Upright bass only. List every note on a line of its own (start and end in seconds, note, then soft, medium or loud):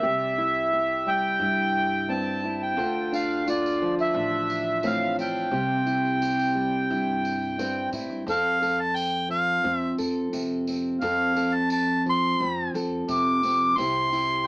0.05 1.37 C2 medium
1.40 2.73 G2 medium
2.77 4.10 D2 medium
4.14 5.47 A1 medium
5.51 6.85 C2 medium
6.90 7.89 G2 medium
7.93 8.08 A2 medium
8.10 8.25 G2 medium
8.27 9.60 F2 medium
9.65 9.97 F2 medium
9.99 10.32 F2 medium
10.33 10.99 F2 medium
11.02 12.36 F2 loud
12.40 12.73 F2 medium
12.74 13.07 F2 medium
13.08 13.74 F2 medium
13.78 14.47 C2 medium